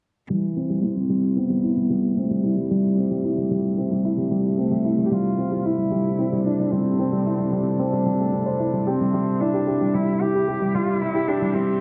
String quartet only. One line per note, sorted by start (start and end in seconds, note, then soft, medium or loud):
0.29 11.80 C3 medium
0.52 8.87 A3 medium
1.15 5.99 E5 medium
1.84 6.09 G4 medium
5.83 10.58 D4 medium
5.93 10.39 A4 medium
9.03 11.80 E5 medium
9.15 11.80 G3 medium
9.66 11.80 G4 medium